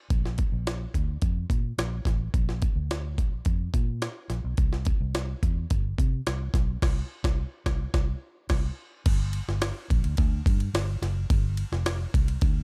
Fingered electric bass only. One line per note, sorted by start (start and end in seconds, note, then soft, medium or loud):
0.10 0.43 A#1 loud
0.52 0.85 A#1 medium
0.94 1.16 D2 medium
1.22 1.44 F2 medium
1.50 1.71 A#2 medium
1.78 2.00 A#1 medium
2.05 2.27 A1 medium
2.34 2.67 A#1 loud
2.76 3.18 D2 medium
3.18 3.40 A#1 medium
3.46 3.68 F2 medium
3.74 4.06 A#2 loud
4.30 4.41 A#1 loud
4.44 4.55 B1 medium
4.58 4.91 C2 loud
5.01 5.33 C2 medium
5.43 5.64 E2 medium
5.71 5.92 G1 medium
5.98 6.20 C3 medium
6.27 6.48 C2 medium
6.54 6.76 B1 medium
6.82 7.01 C2 loud
7.24 7.43 C2 loud
7.66 7.85 C2 loud
7.94 8.13 C2 loud
8.49 8.69 C2 loud
9.06 9.39 G1 loud
9.48 9.70 G1 medium
9.90 10.01 A#1 loud
10.04 10.15 D2 medium
10.18 10.40 D2 loud
10.46 10.68 G2 loud
10.74 10.95 G1 medium
11.02 11.23 F#1 medium
11.30 11.62 G1 loud
11.72 12.04 F1 loud
12.14 12.36 C2 medium
12.42 12.63 D2 loud